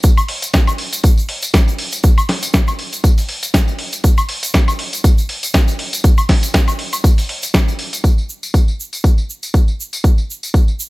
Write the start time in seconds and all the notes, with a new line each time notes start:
0.03 kick, closed hi-hat, tambourine, shaker
0.17 tambourine, high woodblock, shaker
0.28 open hi-hat
0.42 closed hi-hat, tambourine, shaker
0.53 kick, snare, closed hi-hat, tambourine, shaker
0.67 tambourine, high woodblock, shaker
0.78 open hi-hat
0.93 closed hi-hat, tambourine, shaker
1.03 kick, closed hi-hat, tambourine, shaker
1.17 tambourine, shaker
1.29 open hi-hat
1.42 closed hi-hat, tambourine, shaker
1.54 kick, snare, closed hi-hat, tambourine, shaker
1.68 tambourine, shaker
1.78 open hi-hat
1.92 closed hi-hat, tambourine, shaker
2.04 kick, closed hi-hat, tambourine, shaker
2.18 tambourine, high woodblock, shaker
2.29 snare, open hi-hat
2.43 closed hi-hat, tambourine, shaker
2.54 kick, snare, closed hi-hat, tambourine, shaker
2.68 tambourine, high woodblock, shaker
2.79 open hi-hat
2.93 closed hi-hat, tambourine, shaker
3.04 kick, closed hi-hat, tambourine, shaker
3.18 open hi-hat, tambourine, shaker
3.29 open hi-hat
3.43 closed hi-hat, tambourine, shaker
3.54 kick, snare, closed hi-hat, tambourine, shaker
3.68 tambourine, shaker
3.79 open hi-hat
3.93 closed hi-hat, tambourine, shaker
4.04 kick, closed hi-hat, tambourine, shaker
4.18 tambourine, high woodblock, shaker
4.29 open hi-hat
4.43 closed hi-hat, tambourine, shaker
4.54 kick, snare, closed hi-hat, tambourine, shaker
4.68 tambourine, high woodblock, shaker
4.79 open hi-hat
4.93 closed hi-hat, tambourine, shaker
5.04 kick, closed hi-hat, tambourine, shaker
5.18 tambourine, shaker
5.29 open hi-hat
5.43 closed hi-hat, tambourine, shaker
5.54 kick, snare, closed hi-hat, tambourine, shaker
5.68 tambourine, shaker
5.79 open hi-hat
5.93 closed hi-hat, tambourine, shaker
6.04 kick, closed hi-hat, tambourine, shaker
6.18 tambourine, high woodblock, shaker
6.29 kick, snare, open hi-hat
6.43 closed hi-hat, tambourine, shaker
6.54 kick, snare, closed hi-hat, tambourine, shaker
6.68 tambourine, high woodblock, shaker
6.79 open hi-hat
6.93 closed hi-hat, tambourine, high woodblock, shaker
7.04 kick, closed hi-hat, tambourine, shaker
7.18 open hi-hat, tambourine, shaker
7.29 open hi-hat
7.43 closed hi-hat, tambourine, shaker
7.54 kick, snare, closed hi-hat, tambourine, shaker
7.68 tambourine, shaker
7.79 open hi-hat
7.93 closed hi-hat, tambourine, shaker
8.04 kick, tambourine, shaker
8.18 tambourine
8.29 shaker
8.43 tambourine, shaker
8.54 kick, tambourine, shaker
8.68 tambourine
8.80 shaker
8.93 tambourine, shaker
9.04 kick, tambourine, shaker
9.18 tambourine
9.30 shaker
9.43 tambourine, shaker
9.54 kick, tambourine, shaker
9.68 tambourine
9.80 shaker
9.93 tambourine, shaker
10.04 kick, tambourine, shaker
10.18 tambourine
10.30 shaker
10.43 tambourine, shaker
10.54 kick, tambourine, shaker
10.68 tambourine
10.80 shaker